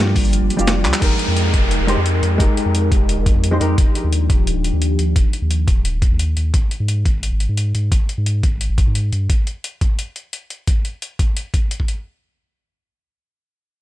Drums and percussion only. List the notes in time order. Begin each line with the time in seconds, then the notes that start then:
0.07 snare
0.16 kick, open hi-hat
0.25 shaker
0.33 closed hi-hat, shaker
0.50 closed hi-hat, shaker
0.59 shaker
0.68 snare, closed hi-hat, shaker
0.85 clap, closed hi-hat
0.93 clap, shaker
1.02 kick, closed hi-hat, crash
1.19 closed hi-hat
1.37 closed hi-hat
1.54 kick, closed hi-hat
1.71 closed hi-hat
1.88 closed hi-hat
2.06 closed hi-hat
2.23 closed hi-hat
2.40 kick, closed hi-hat
2.57 closed hi-hat
2.75 closed hi-hat
2.92 kick, closed hi-hat
3.09 closed hi-hat
3.26 kick, closed hi-hat
3.44 closed hi-hat
3.61 closed hi-hat
3.78 kick, closed hi-hat
3.95 closed hi-hat
4.12 closed hi-hat
4.30 kick, closed hi-hat
4.47 closed hi-hat
4.64 closed hi-hat
4.82 closed hi-hat
4.99 closed hi-hat
5.16 kick, closed hi-hat
5.33 closed hi-hat
5.51 closed hi-hat
5.68 kick, closed hi-hat
5.85 closed hi-hat
6.02 kick, closed hi-hat
6.19 closed hi-hat
6.37 closed hi-hat
6.54 kick, closed hi-hat
6.71 closed hi-hat
6.88 closed hi-hat
7.06 kick, closed hi-hat
7.23 closed hi-hat
7.40 closed hi-hat
7.57 closed hi-hat
7.75 closed hi-hat
7.92 kick, closed hi-hat
8.09 closed hi-hat
8.26 closed hi-hat
8.43 kick, closed hi-hat
8.61 closed hi-hat
8.78 kick, closed hi-hat
8.95 closed hi-hat
9.13 closed hi-hat
9.30 kick, closed hi-hat
9.47 closed hi-hat
9.64 closed hi-hat
9.81 kick, closed hi-hat
9.99 closed hi-hat
10.16 closed hi-hat
10.33 closed hi-hat
10.50 closed hi-hat
10.67 kick, closed hi-hat
10.85 closed hi-hat
11.02 closed hi-hat
11.19 kick, closed hi-hat
11.37 closed hi-hat
11.54 kick, closed hi-hat
11.71 closed hi-hat
11.80 kick
11.88 closed hi-hat